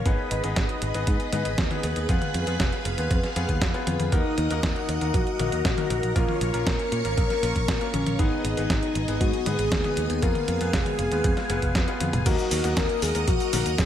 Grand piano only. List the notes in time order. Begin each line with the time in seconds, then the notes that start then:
0.06 B3 D#4 G#4 B4
0.44 B3 D#4 G#4 B4
0.95 B3 D#4 G#4 B4
1.33 B3 D#4 G#4 B4
1.71 B3 D#4 G#4 B4
2.09 B3 F4 G#4 B4
2.47 B3 F4 G#4 B4
2.98 B3 F4 G#4 B4
3.36 B3 F4 G#4 B4
3.74 B3 F4 G#4 B4
4.12 A#3 D#4 F#4 A#4
4.51 A#3 D#4 F#4 A#4
5.01 A#3 D#4 F#4 A#4
5.39 A#3 D#4 F#4 A#4
5.77 A#3 D#4 F#4 A#4
6.16 A#3 C#4 F4 A#4
6.54 A#3 C#4 F4 A#4
7.05 A#3 C#4 F4 A#4
7.43 A#3 C#4 F4 A#4
7.81 A#3 C#4 F4 A#4
8.19 B3 D#4 G#4 B4
8.57 B3 D#4 G#4 B4
9.08 B3 D#4 G#4 B4
9.46 B3 D#4 G#4 B4
9.85 B3 D#4 G#4 B4
10.23 B3 F4 G#4
10.61 B3 F4 G#4 B4
11.12 B3 F4 G#4 B4
11.50 B3 F4 G#4 B4
11.88 B3 F4 G#4 B4
12.26 A#3 D#4 F#4 A#4
12.64 A#3 D#4 F#4 A#4
13.15 A#3 D#4 F#4 A#4
13.53 A#3 D#4 F#4 A#4